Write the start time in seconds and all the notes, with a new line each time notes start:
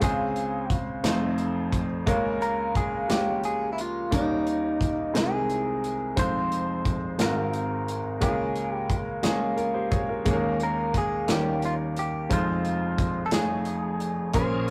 0.01 C#2 C#3 G#3 C4 C#4 F4 G#4 C5, kick, closed hi-hat
0.36 closed hi-hat
0.70 kick, closed hi-hat
1.04 F1 F2 A3 C4 D#4 F4 C5, snare, closed hi-hat
1.38 closed hi-hat
1.72 kick, closed hi-hat
2.06 C#2 C#3 G#3 A#3 C#4 F4 A#4, kick, closed hi-hat
2.42 A#4, closed hi-hat
2.75 G#4, kick, closed hi-hat
3.09 G#3 A#3 C#4 F4 G4, snare, closed hi-hat
3.44 G#4, closed hi-hat
3.73 E4
3.78 F4, closed hi-hat
4.11 D#2 D#3 G3 A#3 C#4 D#4 A#4, kick, closed hi-hat
4.47 closed hi-hat
4.81 kick, closed hi-hat
5.14 C2 C3 G#3 C4 D#4 E4 G#4 A#4, snare, closed hi-hat
5.50 closed hi-hat
5.84 closed hi-hat
6.16 F1 F2 G#3 C4 D#4 F4 C5, kick, closed hi-hat
6.52 closed hi-hat
6.85 kick, closed hi-hat
7.18 G#1 G#2 G#3 C4 F4 F#4 A#4, snare, closed hi-hat
7.53 closed hi-hat
7.88 closed hi-hat
8.21 C#2 C#3 G#3 A#3 C#4 E4 G#4 A#4, kick, closed hi-hat
8.28 F4
8.56 closed hi-hat
8.73 G4
8.90 kick, closed hi-hat
9.23 G#3 A#3 C#4 F4 G#4, snare, closed hi-hat
9.57 F4 A#4, closed hi-hat
9.74 G4 C5
9.91 G#4 C#5, kick, closed hi-hat
10.09 F4 A#4
10.25 D#2 D#3 G#3 A#3 C#4 D#4 G#4, kick, closed hi-hat
10.33 A#4
10.60 A#4, closed hi-hat
10.94 G#4, kick, closed hi-hat
11.28 D#2 D#3 G3 A#3 C#4 D#4 G4 A#4, snare, closed hi-hat
11.62 F4, closed hi-hat
11.97 G4, closed hi-hat
12.29 F1 F2 G#3 C4 D#4 F4 C5, kick, closed hi-hat
12.65 closed hi-hat
12.98 kick, closed hi-hat
13.26 A4
13.31 F1 F2 G#3 D#4 F4 G#4 C#5, snare, closed hi-hat
13.38 A3
13.65 closed hi-hat
14.00 closed hi-hat
14.33 A#1 A#2 F3 A#3 C#4 F4 G#4 A#4 C5, kick, closed hi-hat